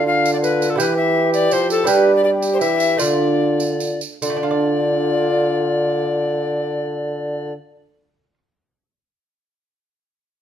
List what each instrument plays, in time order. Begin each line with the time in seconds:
Already playing: lute D3 D4 F4 A4, bassoon D3
0.06 trombone F4, recorder F5
0.26 tambourine
0.33 recorder D5
0.42 recorder B4, tambourine
0.62 tambourine
0.70 recorder A4
0.76 bassoon E3, lute B3 E4 G4, trombone G4, recorder B4
0.80 lute E3, tambourine
0.97 recorder E5
1.34 recorder D5, tambourine
1.51 bassoon F3, lute F3, recorder C5, tambourine
1.70 recorder A4, tambourine
1.84 bassoon G3, lute G3 B3 D4 G4, trombone G4, tambourine
1.88 recorder B4
2.16 recorder D5
2.24 trombone G4, recorder D5
2.42 tambourine
2.53 recorder C5
2.60 lute E3, bassoon E3, recorder E5, tambourine
2.80 tambourine
2.97 bassoon D3, lute D3 A3 D4 F4, trombone F4, recorder D5, tambourine
3.60 tambourine
3.80 tambourine
4.01 tambourine
4.22 lute D3, bassoon D3, trombone F4, recorder D5, tambourine
4.30 lute A3
4.36 lute D4
4.43 lute F4
4.51 lute D5